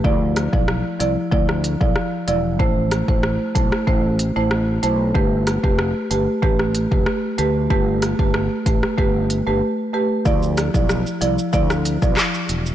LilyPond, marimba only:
\new Staff \with { instrumentName = "Marimba" } { \time 4/4 \key d \dorian \tempo 4 = 94 <f e' d''>8. <f e' d''>16 r8 <f e' d''>16 r16 <f e' d''>16 r8 <f e' d''>16 r8 <f e' d''>16 r16 | <a e' c''>8. <a e' c''>16 r8 <a e' c''>16 r16 <a e' c''>16 r8 <a e' c''>8. <a e' c''>8 | <a g' b'>8. <a g' b'>16 r8 <a g' b'>16 r16 <a g' b'>16 r8 <a g' b'>16 r8 <a g' b'>16 r16 | <a g' b'>8. <a g' b'>16 r8 <a g' b'>16 r16 <a g' b'>16 r8 <a g' b'>8. <a g' b'>8 |
<f e' d''>16 r8 <f e' d''>8. <f e' d''>8 <f e' d''>8. <f e' d''>16 r4 | }